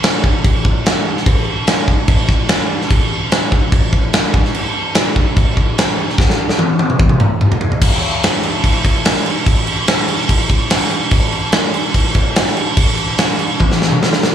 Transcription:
0.03 snare loud
0.03 crash medium
0.24 kick loud
0.45 kick loud
0.45 crash medium
0.65 kick medium
0.86 snare loud
0.86 crash medium
1.17 snare soft
1.26 kick loud
1.26 crash medium
1.67 snare loud
1.67 crash medium
1.88 kick medium
2.08 kick loud
2.08 crash medium
2.29 kick loud
2.29 snare soft
2.49 snare loud
2.49 crash medium
2.81 snare soft
2.91 kick loud
2.91 crash medium
3.32 snare loud
3.32 crash medium
3.52 kick loud
3.72 kick loud
3.72 crash medium
3.93 kick medium
4.13 snare loud
4.13 crash medium
4.34 kick loud
4.45 snare soft
4.55 crash medium
4.95 snare loud
4.95 crash medium
5.16 kick medium
5.37 kick loud
5.37 crash medium
5.57 kick medium
5.78 snare loud
5.78 crash medium
6.09 snare soft
6.18 kick loud
6.18 snare medium
6.30 snare medium
6.49 snare medium
6.59 high tom medium
6.79 high tom medium
6.90 mid tom medium
6.99 kick loud
7.09 mid tom medium
7.20 mid tom loud
7.41 mid tom loud
7.52 floor tom loud
7.61 floor tom loud
7.72 floor tom medium
7.82 kick loud
7.82 crash loud
7.82 crash medium
8.03 crash medium
8.23 snare loud
8.23 crash medium
8.43 crash medium
8.64 kick medium
8.64 crash medium
8.85 kick medium
8.85 crash medium
9.05 snare loud
9.05 crash loud
9.26 crash medium
9.46 kick loud
9.46 crash medium
9.67 crash medium
9.88 snare loud
9.88 crash medium
10.09 crash medium
10.29 kick medium
10.29 crash medium
10.49 kick medium
10.49 crash medium
10.70 snare loud
10.70 crash medium
10.91 crash medium
11.11 kick loud
11.11 crash medium
11.32 crash medium
11.52 snare loud
11.52 crash medium
11.74 crash medium
11.94 kick medium
11.94 crash medium
12.15 kick loud
12.15 crash medium
12.36 snare loud
12.36 crash medium
12.57 crash medium
12.77 kick loud
12.77 crash medium
12.97 crash medium
13.18 snare loud
13.18 crash medium
13.39 crash medium
13.60 kick medium
13.60 high tom medium
13.72 snare medium
13.82 snare medium
13.92 mid tom medium
14.03 snare loud
14.13 snare medium
14.23 snare loud

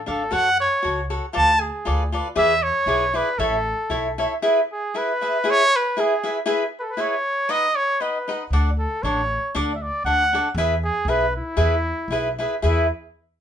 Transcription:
0.06 0.30 G#1 medium
0.06 0.21 D4 medium
0.06 0.22 A4 soft
0.06 0.34 A4 medium
0.06 0.22 D5 soft
0.06 0.22 F5 soft
0.31 0.66 F#2 medium
0.31 0.48 F#4 medium
0.31 0.48 A4 medium
0.31 0.49 C#5 medium
0.31 0.60 F#5 loud
0.31 0.49 F#5 medium
0.60 1.07 C#5 medium
0.83 1.18 C#2 medium
0.83 0.99 F#4 medium
0.83 1.00 A4 soft
0.83 1.00 C#5 medium
0.83 1.00 F#5 medium
1.10 1.25 F#4 soft
1.10 1.25 A4 medium
1.10 1.25 C#5 soft
1.10 1.25 F#5 medium
1.33 1.69 D2 medium
1.33 1.50 F4 medium
1.33 1.51 A4 medium
1.33 1.51 B4 medium
1.33 1.51 D5 medium
1.33 1.62 A5 loud
1.61 2.12 G#4 medium
1.85 2.20 D2 medium
1.85 2.02 F4 medium
1.85 2.02 A4 medium
1.85 2.02 B4 medium
1.85 2.02 D5 medium
2.12 2.27 F4 soft
2.12 2.27 A4 medium
2.12 2.27 B4 medium
2.12 2.28 D5 medium
2.35 2.69 E2 loud
2.35 2.52 E4 medium
2.35 2.52 G#4 medium
2.35 2.52 B4 medium
2.35 2.52 D5 medium
2.35 2.64 E5 loud
2.63 3.18 C#5 loud
2.86 3.20 B1 medium
2.86 3.03 E4 medium
2.86 3.03 G#4 medium
2.86 3.04 B4 medium
2.86 3.04 D5 medium
3.13 3.28 E4 medium
3.13 3.29 G#4 soft
3.13 3.29 B4 medium
3.13 3.40 B4 medium
3.13 3.29 D5 medium
3.38 3.72 A1 loud
3.38 3.55 E4 medium
3.38 4.18 A4 medium
3.38 3.55 A4 medium
3.38 3.56 C#5 medium
3.38 3.55 E5 medium
3.90 4.24 B1 medium
3.90 4.07 E4 medium
3.90 4.07 A4 medium
3.90 4.07 C#5 medium
3.90 4.08 E5 medium
4.18 4.33 E4 medium
4.18 4.33 A4 medium
4.18 4.33 C#5 medium
4.18 4.34 E5 medium
4.42 4.59 E4 medium
4.42 4.59 G#4 medium
4.42 4.59 B4 medium
4.42 4.60 E5 medium
4.72 4.99 G#4 medium
4.94 5.11 E4 soft
4.94 5.11 G#4 soft
4.94 5.11 B4 medium
4.94 5.52 B4 medium
4.94 5.11 E5 medium
5.21 5.36 E4 soft
5.21 5.36 G#4 medium
5.21 5.36 B4 medium
5.21 5.36 E5 medium
5.44 5.61 E4 medium
5.44 5.61 G#4 medium
5.44 5.62 B4 medium
5.44 5.62 E5 medium
5.50 5.78 C#5 loud
5.76 6.02 B4 medium
5.97 6.12 E4 medium
5.97 6.13 G#4 medium
5.97 6.37 G#4 medium
5.97 6.13 B4 medium
5.97 6.13 E5 medium
6.23 6.37 E4 medium
6.23 6.37 G#4 medium
6.23 6.37 B4 medium
6.23 6.38 E5 medium
6.46 6.62 E4 medium
6.46 6.63 G#4 medium
6.46 6.63 B4 medium
6.46 6.63 E5 loud
6.80 6.92 A4 medium
6.80 6.83 B4 medium
6.90 7.02 B4 medium
6.97 7.13 E4 medium
6.97 7.14 G#4 medium
6.97 7.14 B4 medium
6.97 7.52 C#5 medium
6.97 7.14 E5 medium
7.49 7.65 D#4 medium
7.49 7.65 B4 medium
7.49 7.65 D#5 medium
7.49 7.77 D#5 loud
7.49 7.66 F#5 medium
7.76 8.02 C#5 medium
8.00 8.17 D#4 soft
8.00 8.17 B4 medium
8.00 8.40 B4 medium
8.00 8.17 D#5 medium
8.00 8.17 F#5 medium
8.28 8.42 D#4 soft
8.28 8.43 B4 medium
8.28 8.43 D#5 medium
8.28 8.44 F#5 soft
8.51 8.85 D2 medium
8.51 8.69 D4 medium
8.51 8.69 A4 medium
8.51 8.69 D5 medium
8.51 8.69 F#5 medium
8.78 9.04 A4 medium
9.03 9.37 A1 loud
9.03 9.21 D4 medium
9.03 9.21 A4 soft
9.03 9.55 C#5 loud
9.03 9.21 D5 medium
9.03 9.21 F#5 medium
9.55 9.88 D2 loud
9.55 9.71 D4 medium
9.55 9.72 A4 medium
9.55 9.72 D5 medium
9.55 9.72 F#5 medium
9.74 9.84 E5 soft
9.82 10.05 D5 medium
10.04 10.38 D2 medium
10.04 10.22 D4 medium
10.04 10.22 A4 medium
10.04 10.23 D5 medium
10.04 10.53 F#5 loud
10.04 10.23 F#5 medium
10.33 10.47 D4 soft
10.33 10.48 A4 medium
10.33 10.48 D5 medium
10.33 10.48 F#5 medium
10.55 10.88 E2 loud
10.55 10.73 E4 medium
10.55 10.74 G#4 medium
10.55 10.74 B4 medium
10.55 10.74 E5 medium
10.84 11.11 G#4 medium
11.05 11.39 B1 medium
11.05 11.24 E4 medium
11.05 11.24 G#4 medium
11.05 11.25 B4 soft
11.05 11.24 E5 medium
11.09 11.36 B4 loud
11.36 12.35 E4 medium
11.57 11.91 E2 loud
11.57 11.74 E4 medium
11.57 11.74 G#4 medium
11.57 11.74 B4 medium
11.57 11.75 E5 medium
12.08 12.43 B1 medium
12.08 12.27 E4 medium
12.08 12.28 G#4 medium
12.12 12.28 B4 medium
12.12 12.29 E5 medium
12.39 12.53 E4 medium
12.39 12.54 G#4 medium
12.39 12.54 B4 medium
12.39 12.55 E5 soft
12.62 12.89 E2 medium
12.62 12.85 E4 medium
12.62 12.90 E4 medium
12.62 12.85 G#4 medium
12.62 12.86 B4 medium
12.62 12.86 E5 medium

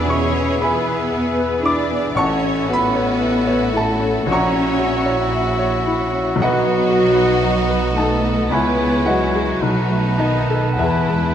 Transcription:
0.00 2.12 E2 medium
0.00 0.32 B3 soft
0.00 2.14 B3 medium
0.00 1.63 E4 medium
0.00 2.14 E4 medium
0.00 0.59 G#4 soft
0.00 2.12 G#4 medium
0.00 2.18 G#4 medium
0.00 0.85 B4 medium
0.00 0.63 E5 medium
0.00 3.97 E5 soft
0.00 0.64 G#5 medium
0.00 0.62 B5 medium
0.00 1.85 B5 medium
0.00 1.65 D6 medium
0.00 2.19 E6 medium
0.06 0.49 B2 medium
0.06 0.60 C#4 medium
0.06 0.61 C#5 medium
0.10 0.58 C#6 medium
0.32 0.75 B3 soft
0.59 1.62 B3 medium
0.59 1.65 B3 medium
0.59 1.02 G#4 soft
0.59 1.63 B4 medium
0.59 1.11 E5 medium
0.59 1.61 B5 medium
0.64 1.62 G#5 medium
0.85 1.27 B4 medium
1.12 1.54 E5 medium
1.39 1.80 B4 medium
1.63 2.00 D4 medium
1.63 2.16 D4 medium
1.63 2.05 E4 medium
1.63 2.15 D5 medium
1.63 2.13 D6 medium
1.91 2.17 B3 medium
2.15 4.24 A1 medium
2.15 2.68 C#4 medium
2.15 2.69 C#4 medium
2.15 4.25 C#4 medium
2.15 4.25 E4 medium
2.15 4.25 F#4 medium
2.15 4.30 A4 medium
2.15 2.69 C#5 medium
2.15 8.48 F#5 medium
2.15 2.66 F#5 medium
2.15 2.67 A5 medium
2.15 2.66 C#6 medium
2.43 2.85 C#4 medium
2.68 3.75 B3 medium
2.68 3.12 F#4 medium
2.68 3.75 B4 medium
2.73 3.73 B5 medium
2.95 3.38 C#5 medium
3.21 3.64 E5 medium
3.47 3.90 C#5 medium
3.72 4.27 A3 medium
3.72 4.28 A3 medium
3.72 4.16 E4 medium
3.72 4.28 A4 medium
3.77 4.25 A5 medium
4.00 4.27 C#4 medium
4.27 6.35 A#1 medium
4.27 6.40 A#1 medium
4.27 5.34 C#4 medium
4.27 5.35 C#4 medium
4.27 6.36 C#4 medium
4.27 6.36 E4 medium
4.27 6.36 F#4 medium
4.27 8.23 F#4 medium
4.27 5.35 C#5 medium
4.27 6.36 E5 medium
4.32 5.34 F#5 medium
4.32 5.34 A#5 medium
4.32 5.33 C#6 medium
4.53 4.97 C#4 medium
4.79 5.23 F#4 medium
5.06 5.50 C#5 medium
5.33 5.77 E5 medium
5.59 6.02 C#5 medium
5.87 6.29 E4 medium
6.12 6.39 C#4 medium
6.36 8.46 B1 medium
6.36 8.47 B1 medium
6.36 7.93 B2 medium
6.36 7.92 F#3 medium
6.36 7.93 F#3 medium
6.36 7.92 F#4 loud
6.36 8.47 F#4 medium
6.41 8.48 B3 medium
6.41 8.52 D#4 medium
6.41 7.13 B4 medium
6.41 8.54 D#5 medium
6.41 7.41 D#5 medium
6.41 7.94 F#5 medium
6.64 7.06 B3 medium
6.89 7.32 F#4 medium
7.14 7.58 B4 medium
7.42 7.85 D#5 medium
7.69 8.13 B4 medium
7.96 8.51 A3 medium
7.96 8.52 A3 medium
7.96 8.40 D#4 medium
7.96 8.51 A4 medium
7.96 8.48 A5 medium
8.23 8.51 B3 medium
8.50 9.58 C#2 medium
8.50 9.59 C#2 medium
8.50 9.62 G#3 medium
8.50 9.06 B3 medium
8.50 9.60 B3 medium
8.50 9.62 E4 medium
8.50 9.64 E4 medium
8.50 9.06 B4 medium
8.50 9.64 C#5 medium
8.50 9.04 E5 medium
8.50 9.31 G#5 medium
8.50 9.03 G#5 medium
8.50 9.02 B5 medium
8.79 9.23 G#3 medium
9.06 10.19 F#3 medium
9.06 10.17 F#3 medium
9.06 9.50 E4 soft
9.06 10.19 F#4 medium
9.06 10.16 B4 medium
9.06 10.16 D#5 medium
9.06 10.15 F#5 medium
9.35 9.62 G#4 medium
9.61 10.76 B1 medium
9.61 10.75 B1 medium
9.61 10.79 A3 medium
9.61 10.76 B3 medium
9.61 10.78 D#4 medium
9.61 10.80 D#4 medium
9.61 11.35 B4 medium
9.61 11.35 A5 medium
9.90 10.37 A3 soft
10.18 10.78 D#3 medium
10.18 10.76 D#4 medium
10.18 10.66 D#4 medium
10.18 10.67 D#5 medium
10.50 10.79 A4 soft
10.73 11.35 E3 medium
10.73 10.80 F#5 medium
10.78 11.35 E2 medium
10.78 10.86 E2 soft
10.78 11.35 E3 medium
10.78 11.35 G#3 medium
10.78 11.35 B3 medium
10.78 11.35 E4 medium
10.78 11.35 G#4 medium
10.78 11.35 B4 medium
10.78 11.35 E5 medium
10.88 10.95 E2 soft
10.96 11.03 E2 soft
11.05 11.12 E2 soft
11.09 11.20 E2 soft
11.09 11.35 G#3 medium
11.22 11.28 E2 soft
11.29 11.35 E2 soft

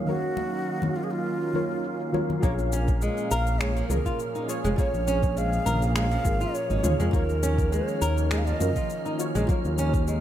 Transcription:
0.00 0.05 D#3 medium
0.00 2.43 D#3 medium
0.00 2.43 F#3 medium
0.00 10.21 A#3 medium
0.00 10.21 C#4 medium
0.00 1.54 F4 medium
0.00 2.13 F#4 medium
0.00 2.45 G#4 medium
0.00 0.08 A#4 medium
0.00 0.10 C#5 medium
0.00 2.45 F5 medium
0.00 10.21 F5 medium
0.05 1.50 D#3 medium
0.05 1.51 F#3 medium
0.05 0.97 F#4 loud
0.05 1.52 A#4 medium
0.05 1.51 F5 medium
0.05 cabasa soft
0.10 1.52 C#5 loud
0.37 muted conga medium
0.37 high conga medium
0.37 cabasa medium
0.52 cabasa soft
0.66 cabasa soft
0.82 muted conga soft
0.82 high conga medium
0.82 low conga medium
0.82 cabasa soft
0.96 1.05 F4 medium
0.96 cabasa medium
1.03 1.12 G#4 medium
1.11 2.14 F4 loud
1.11 cabasa soft
1.25 cabasa soft
1.41 cabasa soft
1.53 2.10 D#3 medium
1.53 2.10 F#3 medium
1.53 2.10 F4 medium
1.53 2.10 A#4 medium
1.53 2.11 C#5 medium
1.53 cabasa medium
1.70 cabasa soft
1.84 cabasa soft
2.00 cabasa soft
2.12 2.39 D#3 medium
2.12 2.39 F4 medium
2.12 2.39 F#4 medium
2.12 2.40 A#4 medium
2.12 2.40 C#5 medium
2.12 high conga medium
2.12 cabasa medium
2.29 low conga medium
2.29 cabasa soft
2.40 3.09 A#1 loud
2.40 7.14 A#2 medium
2.40 10.21 F3 medium
2.40 2.52 A#3 loud
2.40 3.85 F4 medium
2.40 3.86 G#4 medium
2.40 10.21 F6 medium
2.40 kick loud
2.40 cabasa soft
2.44 3.87 C#5 loud
2.59 cabasa soft
2.72 3.01 C#4 loud
2.72 cabasa medium
2.88 kick loud
2.88 cabasa soft
3.02 3.30 G#3 medium
3.02 cabasa soft
3.17 cabasa soft
3.31 3.83 A#1 medium
3.31 3.46 A#4 loud
3.31 3.61 F5 loud
3.31 cabasa medium
3.47 cabasa soft
3.60 3.70 G#3 loud
3.60 3.88 C#5 loud
3.60 finger snap medium
3.60 cabasa soft
3.65 9.02 G#4 medium
3.77 3.90 F3 medium
3.77 cabasa soft
3.88 4.00 C#2 medium
3.88 4.45 F4 medium
3.88 4.46 G#4 medium
3.88 4.44 A#4 medium
3.88 4.46 A#4 medium
3.88 mid tom medium
3.88 cabasa medium
4.06 4.19 F4 medium
4.06 kick medium
4.06 cabasa soft
4.19 cabasa soft
4.35 4.48 D#4 medium
4.35 cabasa soft
4.48 4.74 F4 medium
4.48 4.75 G#4 medium
4.48 4.75 C#5 loud
4.48 cabasa medium
4.64 4.73 F1 medium
4.64 4.78 G#3 loud
4.64 cabasa soft
4.76 4.87 A#3 loud
4.76 6.21 F4 medium
4.76 6.22 G#4 medium
4.76 5.39 C#5 loud
4.76 6.23 C#5 loud
4.76 kick loud
4.76 cabasa soft
4.94 5.59 A#1 medium
4.94 cabasa soft
5.07 5.36 C#4 loud
5.07 cabasa medium
5.23 kick loud
5.23 cabasa soft
5.37 5.65 G#3 medium
5.37 5.96 F5 loud
5.37 cabasa soft
5.53 cabasa soft
5.66 6.18 A#1 medium
5.66 5.81 A#4 loud
5.66 mid tom medium
5.66 cabasa medium
5.82 cabasa soft
5.96 6.05 G#3 loud
5.96 6.56 F5 loud
5.96 finger snap medium
5.96 cabasa soft
6.11 6.25 F3 medium
6.11 cabasa soft
6.24 6.45 G#1 loud
6.24 6.80 F4 medium
6.24 6.81 G#4 medium
6.24 6.81 A#4 loud
6.24 kick loud
6.24 cabasa medium
6.41 6.54 F4 medium
6.41 cabasa soft
6.55 7.00 C#5 loud
6.55 cabasa soft
6.70 6.79 G#1 medium
6.70 6.83 D#4 medium
6.70 cabasa soft
6.83 6.94 D#2 medium
6.83 7.10 F4 medium
6.83 7.10 G#4 medium
6.83 7.11 C#5 loud
6.83 mid tom medium
6.83 cabasa medium
7.00 7.09 F2 medium
7.00 7.13 G#3 loud
7.00 cabasa soft
7.12 7.79 D#2 loud
7.12 10.21 D#3 medium
7.12 8.57 F#3 medium
7.12 7.22 A#3 loud
7.12 8.56 F4 medium
7.12 7.74 A#4 medium
7.12 kick loud
7.12 cabasa soft
7.16 8.58 C#5 loud
7.29 cabasa soft
7.43 7.71 C#4 loud
7.43 cabasa medium
7.58 kick loud
7.58 cabasa soft
7.72 8.00 G#3 medium
7.72 8.33 C#5 medium
7.72 cabasa soft
7.88 cabasa soft
8.02 8.53 D#2 medium
8.02 8.17 A#4 loud
8.02 cabasa medium
8.18 cabasa soft
8.31 8.40 G#3 loud
8.31 8.40 D#5 loud
8.31 finger snap medium
8.31 cabasa soft
8.38 8.47 F5 medium
8.46 8.60 F3 medium
8.46 9.19 D#5 loud
8.46 cabasa soft
8.60 8.71 F#2 medium
8.60 9.16 F4 medium
8.60 9.17 A#4 loud
8.60 mid tom medium
8.60 cabasa medium
8.76 8.89 F4 medium
8.76 kick medium
8.76 cabasa soft
8.90 cabasa soft
9.06 9.19 D#4 medium
9.06 cabasa soft
9.19 9.45 F4 medium
9.19 9.46 F#4 medium
9.19 9.46 C#5 loud
9.19 cabasa medium
9.35 9.44 A#1 medium
9.35 9.48 G#3 loud
9.35 cabasa soft
9.47 10.21 F#3 medium
9.47 9.58 A#3 loud
9.47 10.21 F4 medium
9.47 kick loud
9.47 cabasa soft
9.51 10.21 C#5 loud
9.65 10.21 D#2 medium
9.65 cabasa soft
9.78 10.07 C#4 loud
9.78 cabasa medium
9.94 kick loud
9.94 cabasa soft
10.08 10.21 G#3 medium
10.08 cabasa medium

